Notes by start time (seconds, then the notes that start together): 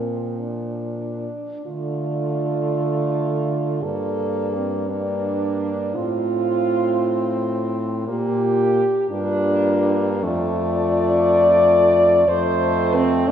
Already playing: A#2 F3 C4 A#4
0.40 D4
1.66 D3 A3 F4 D5
3.83 G2 A#3 A4 D5
4.55 C4
4.90 A#3 D4 D5
5.95 A2 C4 F4 C5
8.08 A#2 A#3 F4 G4
9.11 G2 A#3 D4 F4
10.23 F2 A3 F4 D5
12.28 F2 A3 C5 D#5
12.95 C4
13.28 D4